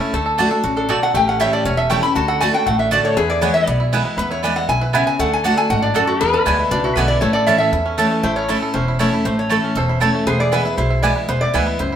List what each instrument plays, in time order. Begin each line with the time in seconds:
Already playing: steel-string acoustic guitar E2 E3 A3 C#4 E4, five-string banjo A3 C#4
0.01 five-string banjo E4
0.13 upright bass D2, steel-string acoustic guitar D3, five-string banjo A3, resonator guitar played with a steel bar A4
0.26 five-string banjo A4
0.38 steel-string acoustic guitar D3 A3 D4 F#4, mandolin A3 F#4 D5 A5, five-string banjo D4
0.51 steel-string acoustic guitar D4 F#4, five-string banjo A4
0.64 upright bass A1, steel-string acoustic guitar C#3, five-string banjo F#4
0.76 five-string banjo D4, resonator guitar played with a steel bar A4
0.89 steel-string acoustic guitar B2, mandolin A3 F#4 D5 A5, five-string banjo A4, resonator guitar played with a steel bar D5
1.02 five-string banjo A3, resonator guitar played with a steel bar F#5
1.14 upright bass A1, steel-string acoustic guitar A2, five-string banjo A3, resonator guitar played with a steel bar G4 G5
1.28 five-string banjo C#4, resonator guitar played with a steel bar F#5
1.40 steel-string acoustic guitar E3 G3 C#4 E4, mandolin A3 E4 C#5 G5, five-string banjo E4, resonator guitar played with a steel bar E5
1.53 five-string banjo A4, resonator guitar played with a steel bar D5
1.65 upright bass E1, steel-string acoustic guitar E2, five-string banjo C#4, resonator guitar played with a steel bar C#5
1.77 five-string banjo A4, resonator guitar played with a steel bar E5
1.90 steel-string acoustic guitar E3 G3 C#4 E4, mandolin A3 E4 C#5 G5, five-string banjo A3, resonator guitar played with a steel bar G5
2.03 steel-string acoustic guitar C#4 E4, five-string banjo E4, resonator guitar played with a steel bar B5
2.15 upright bass D2, steel-string acoustic guitar D3, five-string banjo F#4, resonator guitar played with a steel bar F#4 A5
2.28 five-string banjo A4, resonator guitar played with a steel bar F#5
2.40 steel-string acoustic guitar D3 A3 D4 F#4, mandolin A3 F#4 D5 A5, five-string banjo A3, resonator guitar played with a steel bar G#5
2.54 steel-string acoustic guitar D4 F#4, five-string banjo F#4, resonator guitar played with a steel bar G5
2.66 upright bass A1, steel-string acoustic guitar A2, five-string banjo A3, resonator guitar played with a steel bar F#5
2.79 five-string banjo D4, resonator guitar played with a steel bar E5
2.91 steel-string acoustic guitar D3 A3 D4 F#4, mandolin A3 F#4 D5 A5, five-string banjo F#4, resonator guitar played with a steel bar D5
3.04 five-string banjo A3, resonator guitar played with a steel bar C#5
3.16 upright bass E2, steel-string acoustic guitar E2, five-string banjo E4, resonator guitar played with a steel bar G#4 B4
3.30 five-string banjo E4, resonator guitar played with a steel bar D5
3.41 steel-string acoustic guitar E3 G#3 B3 E4, mandolin B3 E4 B4 G#5, five-string banjo B3, resonator guitar played with a steel bar C#5
3.54 five-string banjo E4, resonator guitar played with a steel bar E5
3.66 upright bass B1, steel-string acoustic guitar B2, five-string banjo B3, resonator guitar played with a steel bar D5
3.80 five-string banjo E4
3.92 steel-string acoustic guitar E3 G#3 B3 E4, mandolin B3 E4 B4 G#5, five-string banjo E4
4.05 five-string banjo B3
4.17 upright bass E2, steel-string acoustic guitar E2, five-string banjo B3, resonator guitar played with a steel bar B4
4.31 five-string banjo E4, resonator guitar played with a steel bar C#5
4.43 steel-string acoustic guitar E3 G#3 B3 E4, mandolin B3 E4 B4 G#5, five-string banjo E4, resonator guitar played with a steel bar D5
4.56 five-string banjo E4, resonator guitar played with a steel bar F#5
4.68 upright bass B1, steel-string acoustic guitar B2, five-string banjo E4, resonator guitar played with a steel bar G#5
4.81 five-string banjo E4, resonator guitar played with a steel bar B4
4.93 steel-string acoustic guitar C#3, mandolin B3 E4 B4 G#5, five-string banjo B3, resonator guitar played with a steel bar E5
5.07 five-string banjo E4, resonator guitar played with a steel bar G#5
5.19 upright bass D2, steel-string acoustic guitar D3, five-string banjo A3, resonator guitar played with a steel bar A4 F#5
5.33 resonator guitar played with a steel bar G#5
5.44 steel-string acoustic guitar D3 A3 D4 F#4, mandolin A3 F#4 D5 A5, five-string banjo D4, resonator guitar played with a steel bar F#5
5.57 five-string banjo A4, resonator guitar played with a steel bar G#5
5.70 upright bass A1, steel-string acoustic guitar G#2, five-string banjo F#4, resonator guitar played with a steel bar F#5
5.82 five-string banjo D4, resonator guitar played with a steel bar D5
5.94 steel-string acoustic guitar F#2, mandolin A3 F#4 D5 A5, five-string banjo A4, resonator guitar played with a steel bar A4
6.07 five-string banjo A3, resonator guitar played with a steel bar F#4
6.21 steel-string acoustic guitar E2, upright bass E2, five-string banjo B3, resonator guitar played with a steel bar G#4 B4
6.33 five-string banjo D4, resonator guitar played with a steel bar B4
6.45 upright bass D2, steel-string acoustic guitar D3 G#3 B3 E4, mandolin B3 E4 D5 G#5, five-string banjo E4
6.59 five-string banjo E4
6.71 upright bass C#2, steel-string acoustic guitar B2, five-string banjo D4, resonator guitar played with a steel bar D5
6.84 five-string banjo E4, resonator guitar played with a steel bar F#4
6.95 upright bass B1, steel-string acoustic guitar D3 G#3 B3 E4, mandolin B3 E4 D5 G#5, five-string banjo B3, resonator guitar played with a steel bar B4
7.08 five-string banjo E4, resonator guitar played with a steel bar D5
7.21 upright bass A1, steel-string acoustic guitar A2, five-string banjo A3, resonator guitar played with a steel bar A4 C#5
7.33 five-string banjo A4, resonator guitar played with a steel bar D5
7.46 steel-string acoustic guitar E3 A3 C#4 E4, mandolin A3 E4 C#5 A5, five-string banjo C#4, resonator guitar played with a steel bar E5
7.58 five-string banjo A4, resonator guitar played with a steel bar E5
7.72 upright bass E2, steel-string acoustic guitar E2, five-string banjo E4
7.86 five-string banjo C#4
7.98 steel-string acoustic guitar E3 A3 C#4 E4, mandolin A3 E4 C#5 A5, five-string banjo A4
8.11 five-string banjo A3
8.23 upright bass A1, steel-string acoustic guitar A2, five-string banjo A3, resonator guitar played with a steel bar E4 C5
8.36 five-string banjo C#4, resonator guitar played with a steel bar C#5
8.48 steel-string acoustic guitar E3 A3 C#4 E4, mandolin A3 E4 C#5 A5, five-string banjo E4, resonator guitar played with a steel bar A4
8.63 five-string banjo A4
8.74 upright bass E1, steel-string acoustic guitar E2, five-string banjo C#4, resonator guitar played with a steel bar C5
8.88 five-string banjo E4
8.99 steel-string acoustic guitar E3 A3 C#4 E4, mandolin A3 E4 C#5 A5, five-string banjo A4, resonator guitar played with a steel bar C#5
9.13 five-string banjo E4
9.25 upright bass A1, steel-string acoustic guitar A2, five-string banjo A3, resonator guitar played with a steel bar C5
9.39 resonator guitar played with a steel bar C#5
9.49 steel-string acoustic guitar E3 A3 C#4 E4, mandolin A3 E4 C#5 A5, five-string banjo A3, resonator guitar played with a steel bar A4
9.64 five-string banjo C#4
9.75 upright bass E1, steel-string acoustic guitar E2, five-string banjo A4, resonator guitar played with a steel bar C5
9.89 five-string banjo E4
10.00 steel-string acoustic guitar E3 A3 C#4 E4, mandolin A3 E4 C#5 A5, five-string banjo A4, resonator guitar played with a steel bar C#5
10.15 five-string banjo A3
10.26 upright bass E1, steel-string acoustic guitar E2, five-string banjo B3, resonator guitar played with a steel bar G#4 C5
10.40 five-string banjo E4, resonator guitar played with a steel bar D5
10.52 steel-string acoustic guitar E3 G#3 B3 E4, mandolin B3 E4 B4 G#5, five-string banjo E4, resonator guitar played with a steel bar B4
10.65 steel-string acoustic guitar B3 E4, five-string banjo E4
10.77 upright bass B1, steel-string acoustic guitar B2, five-string banjo E4, resonator guitar played with a steel bar C5
10.90 five-string banjo E4
11.03 steel-string acoustic guitar E3 G#3 B3 E4, mandolin B3 E4 B4 G#5, five-string banjo E4, resonator guitar played with a steel bar D5
11.16 five-string banjo E4
11.28 upright bass E1, steel-string acoustic guitar E2, five-string banjo B3, resonator guitar played with a steel bar C5
11.41 five-string banjo E4, resonator guitar played with a steel bar D5
11.54 upright bass D2, steel-string acoustic guitar E3 G#3 B3 E4, mandolin B3 E4 B4 G#5, five-string banjo E4, resonator guitar played with a steel bar B4
11.67 five-string banjo B3
11.79 upright bass C#2, steel-string acoustic guitar F#2, five-string banjo E4, resonator guitar played with a steel bar C5
11.92 five-string banjo E4